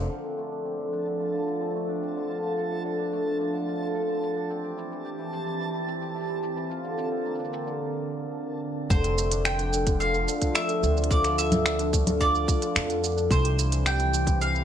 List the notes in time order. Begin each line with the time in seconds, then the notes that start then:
Already playing: F3 A#3 C4 D4 F4 G4
0.09 D3 F3 D4 A4 A5, shaker
0.24 C4, shaker
0.37 A3, shaker
0.51 D4, shaker
0.65 C4, shaker
0.79 D3, shaker
0.92 D4, shaker
1.06 D3, shaker
1.20 F4, shaker
1.33 D3, shaker
1.47 D3, shaker
1.61 C4, shaker
1.74 A3, shaker
1.88 D4, shaker
2.02 C4, shaker
2.16 D3, shaker
2.30 F3 D4 F4, shaker
2.43 D3, shaker
2.57 A4, shaker
2.71 D3, shaker
2.85 D3, shaker
2.99 D4, shaker
3.13 A3, shaker
3.26 F4, shaker
3.40 D4, shaker
3.54 D3, shaker
3.67 F4, shaker
3.81 D3, shaker
3.94 A4, shaker
4.08 D3
4.22 D3, shaker
4.36 D4, shaker
4.49 E3 C4 G4, shaker
4.64 G4, shaker
4.77 E4, shaker
4.91 E3, shaker
5.05 G4, shaker
5.18 E3, shaker
5.32 C5, shaker
5.46 E3, shaker
5.60 E3, shaker
5.74 E4, shaker
5.87 C4, shaker
6.01 G4, shaker
6.15 E4, shaker
6.18 shaker
6.21 shaker
6.23 shaker
6.25 shaker
6.27 E3, shaker
6.30 shaker
6.43 G4, shaker
6.56 E3, shaker
6.69 D3 F4 A#4, shaker
6.84 D3, shaker
6.97 D3, shaker
7.11 C4
7.25 A#3, shaker
7.35 D4, shaker
7.40 shaker
7.44 shaker
7.52 C4, shaker
7.66 D3, shaker
8.90 F1 D3 F3 D4 A4 C5, kick, shaker
9.04 C4, closed hi-hat, shaker
9.17 A3, shaker
9.31 D4, closed hi-hat, shaker
9.45 C4 G5, finger snap, shaker
9.59 D3, closed hi-hat, shaker
9.73 D4, shaker
9.87 D3, kick, closed hi-hat, shaker
10.00 F4 F5, shaker
10.14 D3, shaker
10.28 D3, shaker
10.42 C4, kick, closed hi-hat, shaker
10.55 A3 E5, finger snap, shaker
10.69 D4, closed hi-hat, shaker
10.83 D2 C4, shaker
10.97 D3, shaker
11.04 closed hi-hat
11.11 F4 D5, kick, shaker
11.24 D3, finger snap, closed hi-hat, shaker
11.38 A4 E5, shaker
11.52 D3, closed hi-hat, low conga, shaker
11.66 D3, finger snap, shaker
11.79 D4, closed hi-hat, shaker
11.93 A3, kick, shaker
12.07 F4, closed hi-hat, low conga, shaker
12.21 D4 D5, kick, shaker
12.34 D3, shaker
12.48 F4, kick, shaker
12.62 D3, closed hi-hat, shaker
12.75 F2 A4, finger snap, shaker
12.89 D3, closed hi-hat, shaker
13.03 D3, shaker
13.17 D4, shaker
13.30 C2 E3 C4 G4 C5, kick, shaker
13.44 G4, closed hi-hat, shaker
13.58 E4, shaker
13.72 E3, closed hi-hat, shaker
13.85 G4 G5, finger snap, shaker
13.99 E3, closed hi-hat, shaker
14.13 C5, shaker
14.27 E3, kick, closed hi-hat, shaker
14.40 E3 F5, shaker
14.54 E4, shaker